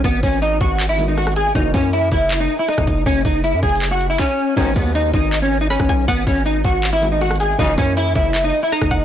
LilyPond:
<<
  \new Staff \with { instrumentName = "Synth pluck" } { \time 4/4 \key gis \minor \tempo 4 = 159 r1 | r1 | r1 | r2. b''8 gis''8 |
fis''1 | r2. ais''8 fis''8 | }
  \new Staff \with { instrumentName = "Clean electric guitar" } { \time 4/4 \key gis \minor b8 cis'8 dis'8 fis'8. e'8 dis'16 fis'8 gis'8 | dis'8 cis'8 e'8 e'8. dis'8 e'16 dis'4 | cis'8 dis'8 e'8 gis'8. fis'8 e'16 cis'4 | cis'8 b8 dis'8 dis'8. cis'8 dis'16 cis'4 |
b8 cis'8 dis'8 fis'8. e'8 dis'16 fis'8 gis'8 | dis'8 cis'8 e'8 e'8. dis'8 e'16 dis'4 | }
  \new Staff \with { instrumentName = "Grand piano" } { \time 4/4 \key gis \minor <dis gis b fis'>2~ <dis gis b fis'>8 <dis gis b fis'>4. | <e ais cis' fis'>1~ | <e ais cis' fis'>1 | <dis gis b fis'>1~ |
<dis gis b fis'>2~ <dis gis b fis'>8 <dis gis b fis'>4. | <e ais cis' fis'>1 | }
  \new Staff \with { instrumentName = "Brass ensemble" } { \clef bass \time 4/4 \key gis \minor r1 | r1 | r1 | <b,, gis, dis>8 r2. r8 |
r1 | <ais,, fis, cis>8 r2. r8 | }
  \new Staff \with { instrumentName = "808-style bass" } { \clef bass \time 4/4 \key gis \minor gis,,8 gis,,4 gis,,2~ gis,,8 | fis,,8 fis,4 fis,,4 r8. fis,,16 fis,,8 | fis,,8 fis,,8. fis,16 fis,,4. r4 | gis,,8 dis,4 gis,,4.~ gis,,16 gis,,16 b,,8 |
gis,,8 gis,,4 gis,,2~ gis,,8 | fis,,8 fis,4 fis,,4 r8. fis,,16 fis,,8 | }
  \new DrumStaff \with { instrumentName = "Drums" } \drummode { \time 4/4 <hh bd>8 <hho bd>8 hh8 <hh bd>8 <hc hh>8 hh8 <hh ss>32 hh32 <hh ss>32 hh32 hh8 | <hh bd>8 <hho bd>8 hh8 <hh bd>8 <hc hh>4 <hh ss>32 hh32 <hh bd ss>32 hh32 <hh bd>8 | <hh bd>8 <hho bd>8 \tuplet 3/2 { hh16 r16 r16 <hh bd>16 hh16 hh16 } <hc hh>8 hh8 <bd sn>4 | <cymc hh bd>8 <hho bd>8 hh8 <hh bd>8 <hc hh>4 <hh ss>32 hh32 <hh bd ss>32 hh32 <hh bd>8 |
<hh bd>8 <hho bd>8 hh8 <hh bd>8 <hc hh>8 hh8 <hh ss>32 hh32 <hh ss>32 hh32 hh8 | <hh bd>8 <hho bd>8 hh8 <hh bd>8 <hc hh>4 <hh ss>32 hh32 <hh bd ss>32 hh32 <hh bd>8 | }
>>